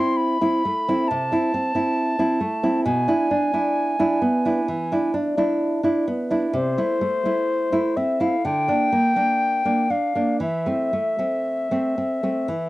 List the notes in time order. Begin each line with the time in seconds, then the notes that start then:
Already playing: C4 E4 C6
0.17 B5
0.41 C4 E4
0.65 A3
0.88 C4 E4
1.08 C3 A5
1.32 C4 E4
1.54 C4
1.75 C4 E4
2.19 C4 E4
2.40 A3
2.63 C4 E4
2.85 B2 G#5
3.08 D4 E4
3.31 D4
3.53 D4 E4
3.99 D4 E4
4.22 B3
4.45 D4 E4
4.68 E3
4.92 D4 E4
5.14 D4
5.37 D4 E4
5.83 D4 E4
6.08 B3
6.30 D4 E4
6.53 C3 C5
6.78 A3 E4
7.01 A3
7.25 A3 E4
7.72 A3 E4
7.97 C4 E5
8.20 A3 E4 F5
8.45 D3 G5
8.68 A#3 D4
8.92 A#3
9.16 A#3 D4
9.65 A#3 D4
9.90 D4 F5
10.15 A#3 D4
10.40 E3 E5
10.66 A3 C4
10.93 A3
11.19 A3 C4
11.71 A3 C4
11.98 C4
12.23 A3 C4
12.48 E3